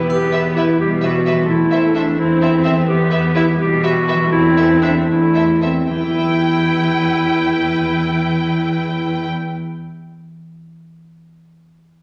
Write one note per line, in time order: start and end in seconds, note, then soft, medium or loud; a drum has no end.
0.00 1.31 E3 soft
0.00 1.45 B3 soft
0.00 1.39 E4 soft
0.00 1.51 G4 soft
0.00 3.29 E5 soft
0.05 1.49 B4 soft
0.10 0.68 E2 soft
0.10 0.76 B3 soft
0.10 0.58 G4 medium
0.10 triangle soft
0.33 0.42 B4 soft
0.33 0.41 E5 soft
0.56 0.79 E4 medium
0.56 0.65 B4 soft
0.56 0.64 E5 soft
0.80 1.38 B2 soft
0.80 1.48 G3 soft
0.80 0.90 G4 medium
1.03 1.49 F#4 medium
1.03 1.11 B4 soft
1.03 1.10 E5 soft
1.26 1.35 B4 soft
1.26 1.34 E5 soft
1.32 2.69 E3 soft
1.36 2.83 C4 soft
1.41 2.78 E4 soft
1.45 2.88 A4 soft
1.49 2.07 E2 soft
1.49 2.17 A3 soft
1.49 1.97 E4 medium
1.72 1.80 A4 soft
1.72 1.80 C5 soft
1.72 1.79 E5 soft
1.95 2.21 D4 medium
1.95 2.02 A4 soft
1.95 2.03 C5 soft
1.95 2.03 E5 soft
2.19 2.77 E2 soft
2.19 2.87 C4 soft
2.19 2.64 E4 medium
2.42 2.49 A4 soft
2.42 2.49 C5 soft
2.42 2.49 E5 soft
2.64 2.75 C4 soft
2.64 2.72 A4 soft
2.64 2.72 C5 soft
2.64 2.72 E5 soft
2.70 4.13 E3 soft
2.75 4.27 B3 soft
2.79 4.22 E4 soft
2.84 3.34 G4 medium
2.84 4.32 B4 soft
2.88 3.47 E2 soft
2.88 3.58 B3 soft
3.10 3.18 B4 soft
3.10 3.19 E5 soft
3.35 3.47 E4 medium
3.35 3.42 B4 soft
3.35 3.43 E5 soft
3.59 4.19 B2 medium
3.59 4.31 G3 soft
3.59 3.83 G4 medium
3.83 4.31 F#4 medium
3.83 3.90 B4 soft
3.83 3.91 E5 soft
4.07 4.15 B4 soft
4.07 4.16 E5 soft
4.14 5.82 E3 soft
4.19 5.85 C4 soft
4.23 6.02 E4 soft
4.28 5.89 A4 soft
4.32 4.95 E2 soft
4.32 5.07 C4 medium
4.32 4.81 E4 medium
4.57 4.65 A4 soft
4.57 4.65 C5 soft
4.57 4.66 E5 soft
4.82 4.94 D4 medium
4.82 4.91 A4 soft
4.82 4.90 C5 soft
4.82 4.91 E5 soft
5.09 5.76 E2 soft
5.09 5.48 A3 soft
5.09 5.61 E4 medium
5.34 5.42 A4 soft
5.34 5.42 C5 soft
5.34 5.43 E5 soft
5.61 5.89 C4 soft
5.61 5.69 A4 soft
5.61 5.69 C5 soft
5.61 5.71 E5 soft
5.89 9.28 E2 soft
5.89 9.80 E3 soft
5.89 9.28 E4 soft
5.89 9.27 B4 soft
5.89 9.27 G5 soft
5.96 9.34 B3 soft
6.03 9.41 E4 soft
6.10 9.48 G4 soft
6.17 9.56 E5 soft